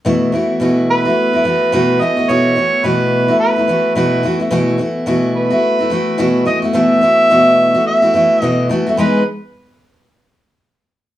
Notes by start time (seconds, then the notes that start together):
0.05 B2 E3 A3 E4 F#4
0.32 E3 A3 E4 F#4
0.60 B2 E3 A3 E4 F#4
0.90 B4
1.05 A3 E4 F#4
1.33 A3 E4 F#4
1.44 E3 A3 E4 F#4
1.72 B2 E3 A3 E4 F#4
2.00 E3 A3 E4 F#4 D#5
2.17 A3 E4 F#4
2.29 B2 E3 A3 E4 F#4 C#5
2.56 E3 A3 E4 F#4
2.84 B2 E3 A3 E4 F#4 B4
3.28 A3 E4 F#4
3.40 B4
3.56 A3 E4 F#4
3.68 E3 A3 E4 F#4
3.95 B2 E3 A3 E4 F#4 B4
4.23 E3 A3 E4 F#4
4.40 A3 E4 F#4
4.51 B2 E3 A3 E4 F#4
4.78 E3 A3 E4 F#4
5.06 B2 E3 A3 E4 F#4
5.36 B4
5.50 A3 E4 F#4
5.79 A3 E4 F#4
5.90 E3 A3 E4 F#4
6.18 B2 E3 A3 E4 F#4
6.45 E3 A3 E4 F#4 D#5
6.62 A3 E4 F#4
6.73 B2 E3 A3 E4 F#4 E5
7.01 E3 A3 E4 F#4
7.30 B2 E3 A3 E4 F#4
7.75 A3 E4 F#4
7.87 E5
8.02 A3 E4 F#4
8.14 E3 A3 E4 F#4
8.41 B2 E3 A3 E4 F#4 D#5
8.69 E3 A3 E4 F#4
8.86 A3 E4 F#4
8.97 E3 G#3 B3 D#4 G#4 B4